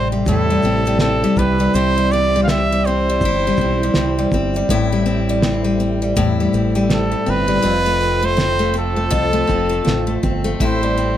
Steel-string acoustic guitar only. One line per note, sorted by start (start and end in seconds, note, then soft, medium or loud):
0.00 0.27 A2 medium
0.00 0.12 G3 medium
0.00 0.64 C4 medium
0.00 0.28 E4 medium
0.12 0.50 G3 soft
0.28 1.38 A2 medium
0.28 1.76 E4 medium
0.50 0.87 G3 medium
0.65 1.01 C4 medium
0.87 1.23 G3 medium
1.02 2.13 C4 medium
1.24 1.60 G3 medium
1.39 1.74 C3 medium
1.60 1.97 G3 medium
1.75 3.22 C3 medium
1.75 3.25 E4 medium
1.98 2.35 G3 medium
2.13 2.50 C4 medium
2.36 2.72 G3 medium
2.50 2.87 C4 medium
2.72 3.09 G3 medium
2.87 3.61 C4 medium
3.10 3.47 G3 medium
3.25 4.71 E4 medium
3.47 3.83 G3 medium
3.61 3.97 C4 soft
3.83 4.18 G3 medium
3.97 4.33 C4 medium
4.19 4.56 G3 medium
4.34 5.05 C4 medium
4.56 4.92 G3 medium
4.70 6.15 A2 medium
4.70 6.16 E4 medium
4.92 5.28 G3 medium
5.06 5.43 C4 medium
5.29 5.63 G3 medium
5.43 5.79 C4 medium
5.64 6.01 G3 medium
5.80 6.54 C4 medium
6.02 6.39 G3 medium
6.17 7.64 A2 medium
6.17 7.63 E4 medium
6.40 6.74 G3 medium
6.54 6.90 C4 medium
6.75 7.10 G3 medium
6.90 7.26 C4 medium
7.12 7.47 G3 medium
7.26 8.00 C4 medium
7.48 7.72 G3 medium
7.62 9.09 F2 medium
7.62 9.10 F4 medium
7.86 8.22 A3 medium
8.01 8.36 C4 medium
8.23 8.59 A3 medium
8.37 8.73 C4 medium
8.59 8.96 A3 medium
8.74 9.47 C4 medium
8.96 9.33 A3 soft
9.10 10.59 F2 medium
9.10 10.59 F4 medium
9.33 9.69 A3 medium
9.47 9.84 C4 medium
9.69 10.07 A3 medium
9.85 10.23 C4 medium
10.07 10.44 A3 medium
10.23 10.97 C4 medium
10.44 10.82 A3 medium
10.61 11.17 A2 medium
10.61 11.17 E4 medium
10.83 11.17 G3 medium
10.98 11.17 C4 medium